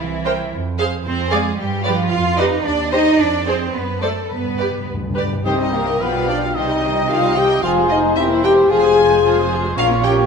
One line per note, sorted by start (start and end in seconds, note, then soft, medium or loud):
0.00 0.43 C2 medium
0.00 0.51 E3 medium
0.00 0.53 E4 medium
0.25 0.38 A#4 medium
0.25 0.38 C5 medium
0.25 0.38 G5 medium
0.52 0.96 F2 medium
0.79 0.91 G#4 medium
0.79 0.91 C5 medium
0.79 0.91 F5 medium
1.04 1.49 F2 medium
1.04 1.30 C4 medium
1.04 1.30 C5 medium
1.31 1.59 G#3 medium
1.31 1.44 G#4 medium
1.31 1.58 G#4 medium
1.31 1.44 D5 medium
1.31 1.44 F5 medium
1.58 2.03 G2 medium
1.58 1.85 G3 medium
1.58 1.85 G4 medium
1.85 2.12 F3 medium
1.85 2.12 F4 medium
1.85 1.98 G4 medium
1.85 1.97 B4 medium
1.85 1.97 D5 medium
2.10 2.56 F2 medium
2.10 2.39 F4 medium
2.10 2.38 F5 medium
2.37 2.65 D#4 medium
2.37 2.51 G4 medium
2.37 2.51 B4 medium
2.37 2.50 D5 medium
2.37 2.45 D#5 medium
2.65 3.10 D#2 medium
2.65 2.92 D4 medium
2.65 2.91 D5 medium
2.92 3.19 D#4 medium
2.92 3.05 G4 medium
2.92 3.04 C5 medium
2.92 3.05 C5 medium
2.92 3.19 D#5 medium
3.18 3.64 F2 medium
3.18 3.47 D4 medium
3.18 3.47 D5 medium
3.47 3.74 C4 medium
3.47 3.60 G#4 medium
3.47 3.75 C5 medium
3.47 3.60 C5 medium
3.47 3.59 D5 soft
3.74 4.21 F#2 medium
3.74 4.02 B3 medium
3.74 4.02 B4 soft
4.02 4.10 A3 medium
4.02 4.15 A4 soft
4.02 4.31 A4 medium
4.02 4.15 C5 soft
4.02 4.15 D5 medium
4.30 4.37 G2 soft
4.30 4.79 G2 soft
4.30 4.87 B3 medium
4.30 4.89 B4 soft
4.38 4.46 G2 soft
4.47 4.53 G2 soft
4.54 4.61 G2 soft
4.54 4.73 D5 soft
4.59 4.69 G2 soft
4.59 4.73 G4 soft
4.59 4.73 B4 soft
4.70 4.77 G2 soft
4.78 4.84 G2 soft
4.85 5.37 D2 soft
4.85 4.93 G2 soft
4.94 5.00 G2 soft
5.01 5.08 G2 medium
5.10 5.16 G2 medium
5.15 5.24 G2 medium
5.15 5.30 G4 soft
5.15 5.30 B4 soft
5.15 5.31 D5 soft
5.25 5.32 G2 medium
5.33 5.41 G2 medium
5.44 5.97 C2 medium
5.44 5.97 C3 soft
5.44 5.97 C3 medium
5.44 5.58 D#3 medium
5.44 5.71 C4 medium
5.44 5.58 C4 medium
5.44 5.58 G4 medium
5.44 5.59 C5 medium
5.44 5.54 C5 medium
5.44 6.03 D#5 medium
5.44 5.97 G5 soft
5.58 5.73 G3 soft
5.58 5.73 D#4 soft
5.62 5.75 D#5 soft
5.71 5.86 D#3 soft
5.71 6.01 A#3 medium
5.71 5.86 A#3 medium
5.71 5.86 G4 soft
5.71 6.01 A#4 medium
5.71 5.88 C5 soft
5.84 6.00 G3 soft
5.84 6.00 D#4 soft
5.84 6.01 D#5 soft
5.99 6.54 B1 medium
5.99 6.54 B2 medium
5.99 6.12 F3 soft
5.99 6.28 B3 medium
5.99 6.12 G4 soft
5.99 6.57 F5 medium
5.99 6.54 G5 medium
5.99 6.14 G5 soft
6.03 6.27 B3 medium
6.03 6.29 B4 medium
6.12 6.27 G3 soft
6.12 6.27 F4 soft
6.12 6.29 F5 soft
6.25 6.41 F3 soft
6.25 6.55 D4 medium
6.25 6.41 D4 medium
6.25 6.41 G4 soft
6.25 6.37 D5 medium
6.25 6.42 G5 medium
6.39 6.54 G3 soft
6.39 6.54 F4 soft
6.39 6.55 F5 soft
6.53 7.63 C2 medium
6.53 7.63 C3 medium
6.53 6.67 D#3 medium
6.53 7.08 D#4 medium
6.53 6.67 G4 soft
6.53 6.68 C5 medium
6.53 7.63 D#5 medium
6.53 7.08 D#5 medium
6.53 7.61 G5 medium
6.58 7.11 D#4 medium
6.66 6.81 G3 soft
6.66 6.81 D#4 medium
6.66 6.83 D#5 soft
6.81 6.95 D#3 soft
6.81 6.95 G4 soft
6.81 6.96 C5 soft
6.94 7.08 G3 soft
6.94 7.08 D#4 soft
6.94 7.10 D#5 soft
7.07 7.21 D#3 soft
7.07 7.35 F4 medium
7.07 7.37 F4 medium
7.07 7.21 G4 soft
7.07 7.22 C5 medium
7.07 7.36 F5 medium
7.20 7.35 G3 soft
7.20 7.35 D#4 soft
7.20 7.37 D#5 medium
7.33 7.49 D#3 soft
7.33 7.48 G4 soft
7.33 7.62 G4 medium
7.33 7.63 G4 medium
7.33 7.63 G5 medium
7.37 7.50 C5 medium
7.48 7.62 G3 soft
7.48 7.62 D#4 soft
7.48 7.64 D#5 soft
7.61 8.16 F1 medium
7.61 8.16 F2 medium
7.61 7.74 F3 medium
7.61 7.75 F4 medium
7.61 7.90 F4 medium
7.61 7.76 G#4 medium
7.61 8.16 C5 medium
7.61 7.70 F5 medium
7.61 8.17 G#5 medium
7.75 7.89 G#3 medium
7.75 7.89 G#4 medium
7.75 7.91 C5 soft
7.88 8.03 F3 soft
7.88 8.19 D#4 medium
7.88 8.17 D#4 medium
7.88 8.03 F4 soft
7.88 8.04 G#4 soft
7.88 7.99 D#5 medium
8.02 8.16 G#3 soft
8.02 8.16 G#4 soft
8.02 8.17 C5 soft
8.15 8.71 E1 medium
8.15 8.70 E2 medium
8.15 8.28 C4 soft
8.15 8.43 E4 medium
8.15 8.44 E4 medium
8.15 8.29 G4 soft
8.15 8.30 A#4 medium
8.15 8.70 C5 medium
8.15 8.25 E5 medium
8.15 8.72 G5 medium
8.28 8.43 A#3 medium
8.28 8.43 E4 medium
8.28 8.44 C5 medium
8.42 8.56 C4 soft
8.42 8.56 G4 soft
8.42 8.70 G4 medium
8.42 8.57 A#4 medium
8.42 8.52 G5 medium
8.55 8.69 A#3 soft
8.55 8.69 E4 medium
8.55 8.70 C5 soft
8.68 9.75 F1 medium
8.68 9.75 F2 medium
8.68 8.82 F3 medium
8.68 8.82 F4 medium
8.68 8.82 G#4 medium
8.68 9.51 G#4 medium
8.68 9.50 G#4 medium
8.68 9.78 C5 medium
8.68 9.48 F5 medium
8.68 9.50 G#5 medium
8.81 8.96 G#3 medium
8.81 8.96 G#4 medium
8.81 8.97 C5 medium
8.95 9.10 F3 medium
8.95 9.10 F4 medium
8.95 9.10 G#4 soft
9.09 9.24 G#3 medium
9.09 9.24 G#4 medium
9.09 9.24 C5 soft
9.23 9.36 F3 soft
9.23 9.36 F4 medium
9.23 9.36 G#4 medium
9.36 9.50 G#3 soft
9.36 9.51 G#4 medium
9.36 9.51 C5 medium
9.51 9.64 F3 soft
9.51 9.64 F4 medium
9.51 9.65 G#4 medium
9.64 9.77 G#3 medium
9.64 9.77 G#4 medium
9.64 9.79 C5 soft
9.76 10.26 A#1 medium
9.76 10.26 A#2 medium
9.76 9.88 C#4 medium
9.76 9.89 F4 medium
9.76 9.90 F4 medium
9.76 10.05 F4 medium
9.76 9.91 A#4 medium
9.76 10.26 C#5 medium
9.76 10.26 F5 medium
9.76 9.86 F5 medium
9.89 10.03 A#3 medium
9.89 10.01 C#4 medium
9.89 10.05 C#5 medium
10.02 10.15 C#4 medium
10.02 10.17 F4 medium
10.02 10.26 G4 medium
10.02 10.26 G4 loud
10.02 10.18 A#4 medium
10.02 10.12 G5 medium
10.16 10.26 A#3 medium
10.16 10.26 C#4 medium
10.16 10.26 C#5 medium